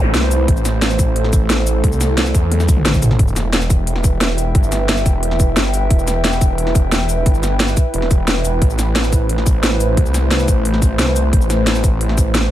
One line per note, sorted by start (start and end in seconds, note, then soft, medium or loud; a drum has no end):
0.00 0.13 A1 loud
0.00 3.15 A3 medium
0.00 3.15 E4 medium
0.00 0.45 B4 medium
0.00 3.15 C5 loud
0.14 0.47 C2 loud
0.14 snare loud
0.14 closed hi-hat medium
0.31 closed hi-hat medium
0.31 cabasa medium
0.48 1.82 A1 medium
0.48 3.17 A4 medium
0.48 kick loud
0.48 closed hi-hat loud
0.57 cabasa soft
0.65 snare soft
0.65 closed hi-hat medium
0.65 cabasa medium
0.82 snare loud
0.82 closed hi-hat medium
0.91 cabasa soft
0.99 kick loud
0.99 closed hi-hat medium
0.99 cabasa medium
1.16 closed hi-hat medium
1.24 snare soft
1.33 kick loud
1.33 closed hi-hat medium
1.33 cabasa medium
1.50 snare loud
1.50 closed hi-hat medium
1.67 closed hi-hat medium
1.67 cabasa medium
1.84 2.33 C2 medium
1.84 kick loud
1.84 closed hi-hat loud
1.92 cabasa soft
2.01 snare soft
2.01 closed hi-hat medium
2.01 cabasa medium
2.18 snare loud
2.18 closed hi-hat medium
2.26 cabasa soft
2.35 2.84 E2 medium
2.35 kick loud
2.35 closed hi-hat medium
2.35 cabasa medium
2.52 closed hi-hat loud
2.52 high tom medium
2.60 snare soft
2.60 high tom medium
2.60 cabasa soft
2.68 kick loud
2.68 closed hi-hat medium
2.68 cabasa medium
2.77 mid tom medium
2.85 3.18 A1 loud
2.85 snare loud
2.85 closed hi-hat loud
2.85 mid tom medium
2.94 kick medium
2.94 mid tom medium
2.94 cabasa soft
3.02 closed hi-hat medium
3.02 mid tom loud
3.02 cabasa medium
3.11 snare soft
3.11 mid tom medium
3.19 4.54 E1 medium
3.19 12.51 E4 medium
3.19 12.51 B4 medium
3.19 8.58 E5 medium
3.19 8.58 G5 loud
3.19 kick loud
3.19 closed hi-hat loud
3.28 cabasa soft
3.36 snare soft
3.36 closed hi-hat medium
3.36 cabasa medium
3.53 snare loud
3.53 closed hi-hat medium
3.62 cabasa soft
3.70 kick loud
3.70 closed hi-hat medium
3.70 cabasa medium
3.87 closed hi-hat loud
3.96 snare soft
4.04 kick loud
4.04 closed hi-hat medium
4.04 cabasa medium
4.21 snare loud
4.21 closed hi-hat loud
4.38 closed hi-hat medium
4.38 cabasa medium
4.55 5.04 G1 medium
4.55 kick loud
4.55 closed hi-hat medium
4.63 cabasa soft
4.72 snare soft
4.72 closed hi-hat medium
4.72 cabasa medium
4.89 snare loud
4.89 closed hi-hat medium
4.97 cabasa soft
5.06 5.55 E1 loud
5.06 kick loud
5.06 closed hi-hat medium
5.06 cabasa medium
5.23 closed hi-hat loud
5.31 snare soft
5.40 kick loud
5.40 closed hi-hat medium
5.40 cabasa medium
5.57 5.89 G1 loud
5.57 snare loud
5.57 closed hi-hat medium
5.74 closed hi-hat medium
5.74 cabasa medium
5.90 7.25 E1 medium
5.90 kick loud
5.90 closed hi-hat medium
5.99 cabasa soft
6.08 snare soft
6.08 closed hi-hat medium
6.08 cabasa medium
6.24 snare loud
6.24 closed hi-hat medium
6.33 cabasa soft
6.41 kick loud
6.41 closed hi-hat medium
6.41 cabasa medium
6.58 closed hi-hat medium
6.67 snare soft
6.75 kick loud
6.75 closed hi-hat medium
6.75 cabasa medium
6.92 snare loud
6.92 closed hi-hat medium
7.09 closed hi-hat medium
7.09 cabasa medium
7.26 7.76 G1 medium
7.26 kick loud
7.26 closed hi-hat medium
7.35 cabasa soft
7.43 snare soft
7.43 closed hi-hat medium
7.43 cabasa medium
7.60 snare loud
7.60 closed hi-hat medium
7.68 cabasa soft
7.77 kick loud
7.77 closed hi-hat medium
7.77 cabasa medium
7.94 8.43 E1 medium
7.94 closed hi-hat medium
8.02 snare soft
8.11 kick loud
8.11 closed hi-hat medium
8.11 cabasa medium
8.28 snare loud
8.28 closed hi-hat medium
8.45 8.60 E1 loud
8.45 closed hi-hat medium
8.45 cabasa medium
8.62 9.96 A1 loud
8.62 12.51 A3 medium
8.62 12.51 C5 medium
8.62 kick loud
8.62 closed hi-hat medium
8.70 cabasa soft
8.79 snare soft
8.79 closed hi-hat medium
8.79 cabasa medium
8.96 snare loud
8.96 closed hi-hat medium
9.04 cabasa soft
9.12 kick loud
9.12 closed hi-hat medium
9.12 cabasa medium
9.29 closed hi-hat medium
9.38 snare soft
9.46 kick loud
9.46 closed hi-hat medium
9.46 cabasa medium
9.63 snare loud
9.63 closed hi-hat medium
9.80 closed hi-hat medium
9.80 cabasa medium
9.97 10.47 C2 medium
9.97 kick loud
9.97 closed hi-hat medium
10.06 cabasa soft
10.14 snare soft
10.14 closed hi-hat medium
10.14 cabasa medium
10.31 snare loud
10.31 closed hi-hat medium
10.40 cabasa soft
10.48 10.98 A1 loud
10.48 kick loud
10.48 closed hi-hat medium
10.48 cabasa medium
10.65 closed hi-hat loud
10.74 snare soft
10.82 kick loud
10.82 closed hi-hat medium
10.82 cabasa medium
10.99 11.32 C2 loud
10.99 snare loud
10.99 closed hi-hat medium
11.16 closed hi-hat medium
11.16 cabasa medium
11.33 12.51 A1 loud
11.33 kick loud
11.33 closed hi-hat medium
11.41 cabasa soft
11.50 snare soft
11.50 closed hi-hat medium
11.50 cabasa medium
11.67 snare loud
11.67 closed hi-hat medium
11.75 cabasa soft
11.84 kick loud
11.84 closed hi-hat medium
11.84 cabasa medium
12.01 closed hi-hat loud
12.09 snare soft
12.18 kick loud
12.18 closed hi-hat medium
12.18 cabasa medium
12.35 snare loud
12.35 closed hi-hat medium